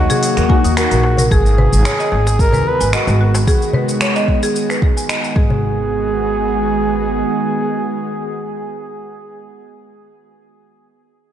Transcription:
Already playing: D#3 F#3 A#3 D#4 F#4 G#4
0.10 G#4, open hi-hat, darbuka tek, darbuka dum, shaker
0.23 open hi-hat, shaker
0.37 D#2 A#4, finger snap, open hi-hat, shaker
0.48 A#3 D#4 G#5, kick
0.52 F#4
0.64 D#2 D#4, open hi-hat, shaker
0.77 F#4 A#4, finger snap, open hi-hat, shaker
0.91 A#1 A#4, open hi-hat, shaker
1.04 darbuka ka
1.17 A#4, open hi-hat, darbuka dum, shaker
1.31 G#1 D#3 G#3 B3 F#4 G#4, kick, shaker
1.46 shaker
1.58 B4, darbuka dum
1.73 G#1, shaker
1.84 C#5, finger snap, darbuka tek, shaker
1.99 D#5, darbuka ka, shaker
2.12 G#1, darbuka tek
2.27 G#4, darbuka tek, shaker
2.39 A#4, kick, shaker
2.53 D#2 B4, darbuka dum, shaker
2.68 B4
2.80 G#1 G#5, shaker
2.93 F#4 D#5, finger snap, shaker
3.07 G#1, darbuka ka, shaker
3.21 F#4
3.35 darbuka tek, shaker
3.47 G#4, kick, shaker
3.62 shaker
3.73 B4, darbuka dum
3.89 shaker
4.01 C#5, finger snap, shaker
4.16 D#5, shaker
4.28 kick
4.43 G#4, shaker
4.56 shaker
4.70 B4, finger snap, shaker
4.82 kick
4.97 G#5, shaker
5.09 D#5, finger snap, shaker
5.24 shaker
5.35 G#1 D#3 G#3 B3 F#4 G#4, kick, darbuka ka
5.50 darbuka dum

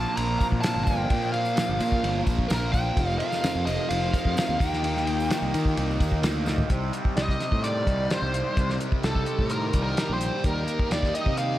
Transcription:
Already playing: A#2 F3 A#3 C4 D4 F4 A#4 A5
0.06 tambourine
0.16 A#1 A#5, ride
0.39 A#5, kick, ride, tambourine
0.52 A#2, kick
0.61 A#2 F3 A5, snare, ride, tambourine
0.66 A#3
0.75 G1, tambourine
0.84 A#3 G5, kick, ride, tambourine
0.90 F3
1.09 A#2 F3 A#3, kick, ride, tambourine
1.22 tambourine
1.32 A#3 F5, ride, tambourine
1.37 F3
1.45 tambourine
1.57 A#2 F3 A#3, snare, ride, tambourine
1.69 G1, tambourine
1.80 A#2 A#3, ride, tambourine
1.84 F3
1.92 kick
2.03 G1, ride
2.27 A#1, kick, ride, tambourine
2.39 kick
2.48 A#1 A#2 F3 A#4, snare, ride, tambourine
2.53 A#3
2.62 tambourine
2.72 F3 A#3 G5, kick, ride, tambourine
2.95 F1 F2 C3 F3 D#4 F4 A#4, kick, ride, tambourine
3.10 tambourine
3.19 C3 F3 F5, ride, tambourine
3.32 snare, tambourine
3.42 F2 C3 F3, snare, ride, tambourine
3.55 F2, tambourine
3.66 F1 C3 F3 D#5, ride, tambourine
3.89 F1 F5, ride
4.14 kick, ride, tambourine
4.25 F2, kick
4.35 F2 C3 F3, snare, ride, tambourine
4.49 D#2
4.59 D#2 D#3 A#3 D#4 G4 G5, kick, ride, tambourine
4.73 snare
4.83 D#3 A#3 D#4, ride, tambourine
4.96 snare, tambourine
5.06 A#3 D#4, ride, tambourine
5.20 tambourine
5.30 D#3 A#3, snare, ride, tambourine
5.34 D#4
5.42 C2, tambourine
5.53 D#3 A#3 D#4, ride, tambourine
5.65 kick, tambourine
5.77 C2, ride, tambourine
5.91 tambourine
6.00 D#2, kick, ride, tambourine
6.12 kick
6.22 D2 D#3 A#3 D#4, snare, ride, tambourine
6.35 tambourine
6.45 A#3 D#4, snare, tambourine
6.58 floor tom, tambourine
6.69 C2 C3 G3 C4 D#4 G4, kick, closed hi-hat
6.92 G3, closed hi-hat
7.05 kick
7.16 C2 G4 D#5, snare, closed hi-hat
7.28 kick, snare
7.39 C4, snare, closed hi-hat
7.52 A2, kick
7.62 D#3 D5, closed hi-hat
7.87 C2 G3, kick, closed hi-hat
8.10 G4 C5, snare, closed hi-hat
8.22 C2
8.33 C4, closed hi-hat
8.57 C2 C3, kick, closed hi-hat
8.70 snare
8.80 G3, closed hi-hat
8.92 kick
9.03 C2 G4 A4, snare, closed hi-hat
9.15 kick
9.26 C4, closed hi-hat
9.39 A2, kick
9.50 D#3 A#4, closed hi-hat
9.73 C2 G3, kick, closed hi-hat
9.83 A#4
9.97 G4, snare, closed hi-hat
10.09 A#1
10.14 C5
10.20 C4, closed hi-hat
10.43 D#2 D#3 A#3 G4 A#4, kick, closed hi-hat
10.66 A#3, closed hi-hat
10.79 kick
10.90 D#2 G4 D5, snare, closed hi-hat
11.03 kick, snare
11.13 D#4 D#5, closed hi-hat
11.26 C3, kick
11.36 D#3 F5, closed hi-hat

